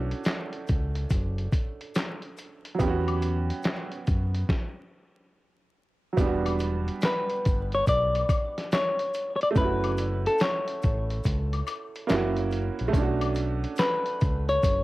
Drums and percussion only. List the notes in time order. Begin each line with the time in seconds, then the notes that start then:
0.11 closed hi-hat
0.24 snare, clap, closed hi-hat, maracas
0.53 closed hi-hat
0.67 kick, closed hi-hat, maracas
0.96 closed hi-hat
1.10 kick, closed hi-hat, maracas
1.38 closed hi-hat
1.52 kick, closed hi-hat, maracas
1.81 closed hi-hat
1.95 snare, clap, closed hi-hat, maracas
2.22 closed hi-hat
2.37 closed hi-hat, maracas
2.65 closed hi-hat
2.79 kick, closed hi-hat, maracas
3.08 closed hi-hat, high woodblock
3.22 closed hi-hat, maracas
3.50 closed hi-hat
3.63 snare, clap, closed hi-hat, maracas
3.92 closed hi-hat
4.07 kick, closed hi-hat, maracas
4.35 closed hi-hat
4.49 kick, snare
6.17 kick, closed hi-hat, maracas
6.46 closed hi-hat, high woodblock
6.59 closed hi-hat, maracas
6.88 closed hi-hat
7.01 snare, clap, closed hi-hat, maracas
7.29 closed hi-hat
7.45 kick, closed hi-hat, maracas
7.72 closed hi-hat
7.86 kick, closed hi-hat, maracas
8.15 closed hi-hat, high woodblock
8.29 kick, closed hi-hat, high woodblock, maracas
8.58 snare, closed hi-hat
8.72 snare, clap, closed hi-hat, maracas
8.99 closed hi-hat
9.14 closed hi-hat, maracas
9.41 closed hi-hat
9.56 kick, closed hi-hat, maracas
9.84 closed hi-hat, high woodblock
9.97 closed hi-hat, maracas
10.26 closed hi-hat
10.38 snare, clap, closed hi-hat, maracas
10.68 closed hi-hat
10.82 kick, closed hi-hat, maracas
11.10 closed hi-hat
11.24 kick, closed hi-hat, maracas
11.53 closed hi-hat, high woodblock
11.67 closed hi-hat, high woodblock, maracas
11.96 closed hi-hat
12.09 snare, clap, closed hi-hat, maracas
12.37 closed hi-hat
12.51 closed hi-hat, maracas
12.79 closed hi-hat
12.93 kick, closed hi-hat, maracas
13.21 closed hi-hat, high woodblock
13.35 closed hi-hat, maracas
13.64 closed hi-hat
13.76 snare, clap, closed hi-hat, maracas
14.06 closed hi-hat
14.21 kick, closed hi-hat, maracas
14.49 closed hi-hat
14.63 kick, closed hi-hat, maracas